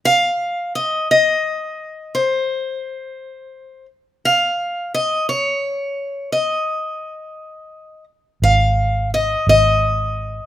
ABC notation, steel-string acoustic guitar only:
X:1
M:6/8
L:1/8
Q:3/8=57
K:Ab
V:1 name="Steel-string acoustic guitar"
f2 e e3 | c4- c z | f2 e d3 | e4- e z |
f2 e e3 |]